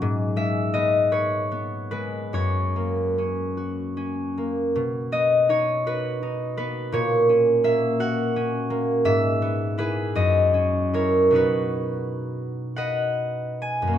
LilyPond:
<<
  \new Staff \with { instrumentName = "Harp" } { \time 6/8 \key b \major \tempo 4. = 53 << { r8 e''8 dis''8 cis''4 b'8 | cis''2. | r8 dis''8 cis''8 b'4 b'8 | cis''4 e''8 fis''4. |
e''4 b'8 dis''4 cis''8 | b'4. fis''4 gis''8 | } \\ { r2. | r2. | r2. | r2. |
r2. | r4. <b' dis''>4. | } >> }
  \new Staff \with { instrumentName = "Harp" } { \time 6/8 \key b \major gis,8 gis8 b8 b'8 b8 gis8 | fis,8 ais8 cis'8 fis'8 cis'8 ais8 | b,8 b8 dis'8 fis'8 dis'8 b8 | ais,8 cis'8 ais8 fis'8 cis'8 ais8 |
gis,8 b8 <e' gis'>8 fis,8 cis'8 <e' ais'>8 | <b, b dis' fis'>2. | }
>>